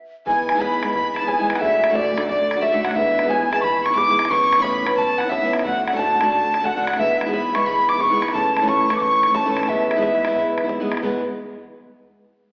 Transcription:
0.26 steel-string acoustic guitar E3 G#3 B3 E4, fiddle G#5, flute G#5, bodhran
0.49 flute G#5, bodhran
0.54 steel-string acoustic guitar E3 G#3 B3 E4
0.60 flute B5, fiddle B5, bodhran
0.82 steel-string acoustic guitar E3 G#3 B3 E4, bodhran
0.94 fiddle B5, flute B5, bodhran
1.16 fiddle A5, bodhran
1.22 steel-string acoustic guitar G#3 B3 E4
1.27 fiddle G#5, flute G#5, bodhran
1.39 steel-string acoustic guitar E3 G#3 B3 E4
1.50 bodhran
1.55 fiddle F#5, bodhran
1.59 steel-string acoustic guitar D3 A3 D4, fiddle E5, flute E5, bodhran
1.64 steel-string acoustic guitar F#4
1.84 bodhran
1.89 steel-string acoustic guitar D2 A2 D3 A3 D4 F#4
1.94 fiddle D5, flute D5, bodhran
2.16 steel-string acoustic guitar D3 A3 D4 F#4, bodhran
2.28 fiddle D5, flute D5, bodhran
2.51 bodhran
2.56 steel-string acoustic guitar D3 A3 D4 F#4
2.61 fiddle E5, flute E5, bodhran
2.72 steel-string acoustic guitar D2 A2 D3 A3 D4 F#4
2.84 flute F#5, fiddle F#5, bodhran
2.91 bodhran
2.95 steel-string acoustic guitar E3 G#3 B3 E4, fiddle E5, flute E5, bodhran
3.19 steel-string acoustic guitar E4, bodhran
3.24 steel-string acoustic guitar E3 G#3 B3
3.29 flute G#5, fiddle G#5, bodhran
3.50 steel-string acoustic guitar E3 G#3 B3 E4, fiddle A5, bodhran
3.61 fiddle B5, flute B5 C#6, bodhran
3.84 fiddle C#6, flute C#6, bodhran
3.90 steel-string acoustic guitar G#3 B3 E4
3.95 fiddle D6, flute D6, bodhran
4.07 steel-string acoustic guitar E3 G#3 B3 E4
4.19 bodhran
4.25 bodhran
4.30 steel-string acoustic guitar E3 B3 C#4 E4, fiddle C#6, flute C#6, bodhran
4.53 bodhran
4.58 steel-string acoustic guitar A2 E3 B3 C#4 E4
4.63 fiddle B5, flute B5, bodhran
4.85 steel-string acoustic guitar E3 B3 C#4 E4, bodhran
4.97 fiddle A5, flute A5, bodhran
5.18 fiddle F#5, flute F#5, bodhran
5.24 steel-string acoustic guitar B3 C#4 E4
5.29 fiddle E5, flute E5, bodhran
5.42 steel-string acoustic guitar A2 E3 B3 C#4 E4
5.53 bodhran
5.59 bodhran
5.64 steel-string acoustic guitar D3 A3 D4 F#4, fiddle F#5, flute F#5, bodhran
5.87 fiddle F#5, flute F#5, bodhran
5.93 steel-string acoustic guitar D2 A2 D3 A3 D4 F#4, fiddle A5
5.99 flute A5, bodhran
6.20 steel-string acoustic guitar D3 A3 D4 F#4, bodhran
6.31 fiddle A5, flute A5, bodhran
6.54 bodhran
6.60 steel-string acoustic guitar D3 A3 D4 F#4
6.65 fiddle F#5, flute F#5, bodhran
6.76 steel-string acoustic guitar D2 A2 D3 A3 D4 F#4
6.87 bodhran
6.93 bodhran
6.98 steel-string acoustic guitar E3 G#3 B3 E4, fiddle E5, flute E5, bodhran
7.21 bodhran
7.26 steel-string acoustic guitar E3 G#3 B3 E4
7.33 fiddle B5, flute B5, bodhran
7.54 steel-string acoustic guitar E3 G#3 B3 E4, fiddle C#6, flute C#6, bodhran
7.66 fiddle B5, flute B5, bodhran
7.89 fiddle D6, flute D6, bodhran
7.93 steel-string acoustic guitar G#3 B3 E4
8.00 fiddle C#6, flute C#6, bodhran
8.11 steel-string acoustic guitar E3 G#3 B3 E4
8.22 flute B5, bodhran
8.28 bodhran
8.33 steel-string acoustic guitar E3 A3 C#4 E4, fiddle A5, flute A5, bodhran
8.56 flute A5, fiddle A5, bodhran
8.61 steel-string acoustic guitar A2 E3 A3 C#4 E4
8.68 fiddle C#6, flute C#6, bodhran
8.89 steel-string acoustic guitar E3 A3 C#4 E4, bodhran
8.96 flute D6
9.01 fiddle C#6, flute C#6, bodhran
9.23 bodhran
9.28 steel-string acoustic guitar A3 C#4 E4
9.35 fiddle A5, flute A5, bodhran
9.45 steel-string acoustic guitar A2 E3 A3 C#4 E4
9.57 bodhran
9.63 bodhran
9.68 steel-string acoustic guitar E3 G#3 B3 E4, fiddle E5, flute E5, bodhran
9.91 bodhran
9.96 steel-string acoustic guitar E3 G#3 B3 E4
10.02 bodhran
10.24 steel-string acoustic guitar E3 G#3 B3 E4, bodhran
10.37 bodhran
10.58 bodhran
10.64 steel-string acoustic guitar G#3 B3 E4
10.69 bodhran
10.80 steel-string acoustic guitar E3 G#3 B3 E4
10.92 bodhran
10.97 bodhran
11.02 steel-string acoustic guitar E3 G#3 B3 E4, bodhran

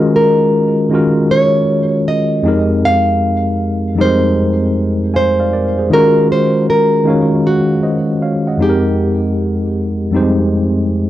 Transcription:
Already playing: tine electric piano D#3 G#3 C#4 F4 F#4 A#4 C5 D#5
0.16 nylon-string guitar A#4
0.90 tine electric piano D#3 G#3 C#4 F4
0.94 tine electric piano F#4 A#4
1.31 nylon-string guitar C#5
2.08 nylon-string guitar D#5
2.43 tine electric piano F2 G#3 C4 D#4
2.47 tine electric piano G4 A#4
2.85 nylon-string guitar F5
3.95 tine electric piano F2 G3 C4 D#4
4.00 tine electric piano G#3 G4 A#4, nylon-string guitar C5
5.14 nylon-string guitar C5, tine electric piano F5 G#5
5.40 tine electric piano D5 F5
5.53 tine electric piano A#4 D5
5.78 tine electric piano G#4 C5
5.90 tine electric piano D#3 G#3 C#4 F4, nylon-string guitar A#4
5.94 tine electric piano F#4 A#4
6.32 nylon-string guitar C5
6.70 nylon-string guitar A#4
7.04 tine electric piano D#3 G#3 C#4 F5
7.09 tine electric piano F#4 C#5
7.47 nylon-string guitar F#4
7.83 tine electric piano C5 D#5
8.22 tine electric piano C#5 F5
8.47 tine electric piano D#5 F#5
8.57 tine electric piano F2 G#3 C4 D#4
8.62 tine electric piano G4 G#4, nylon-string guitar G4
8.69 tine electric piano A#4
10.11 tine electric piano F2 G3 C4 D#4
10.16 tine electric piano G#3 G4 C5

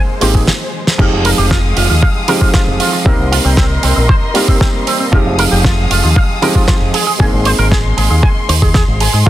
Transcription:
Already playing: grand piano G#3 A#3 C4 D#4 G#4, violin section G#3 C5
0.21 fingered electric bass G#1, grand piano G#3 A#3 C4 D#4 G4, clean electric guitar C5, open hi-hat
0.35 clean electric guitar G#4, kick
0.47 snare
0.87 snare
0.98 fingered electric bass F1, grand piano F3 G#3 C4 D#4 G4, violin section G#3 F5 D#6, clean electric guitar F4, kick, crash
1.13 fingered electric bass F1
1.25 clean electric guitar A#4, open hi-hat
1.38 fingered electric bass F1, clean electric guitar G4
1.51 clean electric guitar F4, kick, snare
1.77 fingered electric bass F1, clean electric guitar F4, open hi-hat
1.90 fingered electric bass D#2, clean electric guitar F4
2.02 clean electric guitar F5, kick
2.28 grand piano F3 G#3 C4 D#4 G4, clean electric guitar A#4, open hi-hat
2.41 clean electric guitar F4, kick
2.54 clean electric guitar F4, kick, snare
2.68 fingered electric bass F1
2.80 clean electric guitar F4, open hi-hat
2.93 clean electric guitar F4
3.05 fingered electric bass C2, grand piano G3 A#3 C4 D#4 A#4, clean electric guitar C4, violin section A#4 D#5 C6, kick
3.19 fingered electric bass C2
3.32 clean electric guitar F4, open hi-hat
3.45 fingered electric bass C2, clean electric guitar C4
3.57 clean electric guitar C4, kick, snare
3.83 fingered electric bass C2, clean electric guitar C4, open hi-hat
3.96 fingered electric bass A#1, clean electric guitar C4
4.09 clean electric guitar C5, kick
4.34 grand piano G3 A#3 C4 D#4 G4, clean electric guitar F4, open hi-hat
4.48 clean electric guitar C4, kick
4.61 clean electric guitar C4, kick, snare
4.87 clean electric guitar C4, open hi-hat
5.00 clean electric guitar C4
5.12 fingered electric bass F1, grand piano F3 G#3 C4 D#4 G4, violin section G#3 F5 D#6, clean electric guitar F4, kick
5.26 fingered electric bass F1
5.39 clean electric guitar A#4, open hi-hat
5.51 fingered electric bass F1, clean electric guitar G4
5.64 clean electric guitar F4, kick, snare
5.90 fingered electric bass F1, clean electric guitar F4, open hi-hat
6.04 fingered electric bass D#2, clean electric guitar F4
6.16 clean electric guitar F5, kick
6.42 grand piano F3 G#3 C4 D#4 G4, clean electric guitar A#4, open hi-hat
6.55 clean electric guitar F4, kick
6.68 clean electric guitar F4, kick, snare
6.81 fingered electric bass F1
6.94 clean electric guitar G#4, violin section C6, open hi-hat
7.07 clean electric guitar G#4
7.19 fingered electric bass G#1, grand piano G#3 A#3 C4 D#4 G#4, clean electric guitar G#4, kick
7.33 fingered electric bass G#1
7.45 clean electric guitar C5, open hi-hat
7.59 fingered electric bass G#1, clean electric guitar A#4
7.71 clean electric guitar G#4, kick, snare
7.97 fingered electric bass G#1, clean electric guitar G#4, open hi-hat
8.10 fingered electric bass D#2, clean electric guitar G#4
8.23 clean electric guitar G#5, kick
8.49 fingered electric bass D#2, clean electric guitar C5, open hi-hat
8.62 clean electric guitar G#4, kick
8.74 clean electric guitar G#4, kick, snare
8.88 fingered electric bass G#1
9.00 clean electric guitar G#4, open hi-hat
9.13 fingered electric bass G#2, clean electric guitar G#4
9.26 fingered electric bass F1, grand piano F3 G#3, clean electric guitar F4, violin section D#6, kick

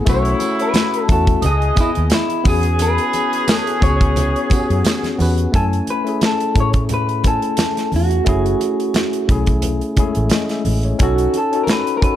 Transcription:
0.05 fingered electric bass B1, horn section C#3 A3 E4, tine electric piano A3 C#4 E4 F#4, kick, closed hi-hat, tambourine, muted conga
0.09 clean electric guitar C#5
0.25 closed hi-hat
0.40 closed hi-hat, tambourine, muted conga
0.59 clean electric guitar B4, closed hi-hat
0.74 snare, closed hi-hat, tambourine, high conga
0.94 closed hi-hat
1.08 fingered electric bass E2, tine electric piano A3 C#4 E4 F#4, clean electric guitar A4, kick, closed hi-hat, tambourine
1.27 kick, closed hi-hat
1.42 fingered electric bass C#2, horn section E3 G#4 D#5, clean electric guitar G#4, closed hi-hat, tambourine, muted conga, low conga
1.62 closed hi-hat
1.76 tine electric piano B3 E4 G#4 D#5, muted fingered electric bass stroke, kick, closed hi-hat, tambourine, muted conga, low conga
1.80 clean electric guitar E4
1.95 fingered electric bass D#2, closed hi-hat
2.10 snare, closed hi-hat, tambourine, high conga
2.14 clean electric guitar E4
2.30 closed hi-hat
2.44 fingered electric bass E2, horn section E3 C#4 G#4, tine electric piano B3 C#4 F#4, kick, open hi-hat, tambourine, high conga
2.48 tine electric piano G#4, clean electric guitar G#4
2.63 closed hi-hat
2.79 clean electric guitar B4, closed hi-hat, tambourine, muted conga
2.98 closed hi-hat
3.13 closed hi-hat, tambourine, muted conga
3.33 closed hi-hat
3.48 snare, closed hi-hat, tambourine, high conga
3.55 clean electric guitar A4
3.67 closed hi-hat
3.81 fingered electric bass C#2, tine electric piano B3 C#4 F#4 G#4, clean electric guitar C#5, kick, closed hi-hat, tambourine
4.01 kick, closed hi-hat
4.16 closed hi-hat, tambourine, muted conga, low conga
4.36 closed hi-hat
4.50 tine electric piano B3 C#4 F#4 G4, muted fingered electric bass stroke, kick, closed hi-hat, tambourine, muted conga, low conga
4.60 tine electric piano G#4
4.70 fingered electric bass F#2, closed hi-hat
4.85 snare, closed hi-hat, tambourine, high conga
5.03 snare, closed hi-hat, high conga
5.18 fingered electric bass E2, tine electric piano B3 C#4 F#4 B4, open hi-hat, tambourine, high conga
5.38 closed hi-hat
5.52 fingered electric bass F#2, tine electric piano A3 C#4 E4 G#5, clean electric guitar A4, kick, closed hi-hat, muted conga
5.73 closed hi-hat
5.87 clean electric guitar B4, closed hi-hat, muted conga
6.04 tine electric piano A3 C#4 E4, closed hi-hat
6.09 tine electric piano G#4
6.21 clean electric guitar A4, snare, closed hi-hat, high conga
6.40 closed hi-hat
6.55 fingered electric bass A2, tine electric piano A3 C#4 E4 G#4, kick, closed hi-hat
6.60 clean electric guitar C#5
6.73 kick, closed hi-hat
6.89 closed hi-hat, muted conga, low conga
6.94 clean electric guitar B4
7.09 closed hi-hat
7.23 tine electric piano A3 C#4 E4 G#5, kick, closed hi-hat, muted conga
7.27 clean electric guitar A4
7.42 closed hi-hat
7.57 snare, closed hi-hat, high conga
7.77 snare, closed hi-hat
7.92 fingered electric bass E2, open hi-hat, high conga
7.96 clean electric guitar F#4
8.11 closed hi-hat
8.25 fingered electric bass F#1, tine electric piano A3 C#4 E4, kick, closed hi-hat, muted conga
8.29 tine electric piano G#4
8.46 closed hi-hat
8.61 closed hi-hat, muted conga
8.80 closed hi-hat
8.94 snare, closed hi-hat, high conga
9.13 closed hi-hat
9.27 fingered electric bass B1, tine electric piano A3 C#4 E4, kick, closed hi-hat
9.32 tine electric piano G#4
9.46 kick, closed hi-hat
9.62 closed hi-hat, muted conga, low conga
9.81 closed hi-hat
9.96 tine electric piano G#3 C#4 E4 G#4, muted fingered electric bass stroke, kick, closed hi-hat, muted conga, low conga
10.03 tine electric piano A3
10.15 fingered electric bass A1, closed hi-hat
10.30 tine electric piano D#5, snare, closed hi-hat, high conga
10.49 tine electric piano E5, snare, closed hi-hat
10.65 fingered electric bass A1, open hi-hat, high conga
10.83 tine electric piano C#5, closed hi-hat
10.99 fingered electric bass B1, tine electric piano C#4 D#4 F#4, kick, closed hi-hat, muted conga
11.03 clean electric guitar F#4, tine electric piano A4
11.18 closed hi-hat
11.34 closed hi-hat, muted conga
11.38 clean electric guitar A4
11.52 tine electric piano C#4 D#4 F#4 A4, closed hi-hat
11.64 clean electric guitar A#4, high conga
11.68 clean electric guitar B4, snare, closed hi-hat
11.87 closed hi-hat
11.97 clean electric guitar A#4
12.01 tine electric piano C#4 D#4 F#4 A4, clean electric guitar B4, kick, closed hi-hat

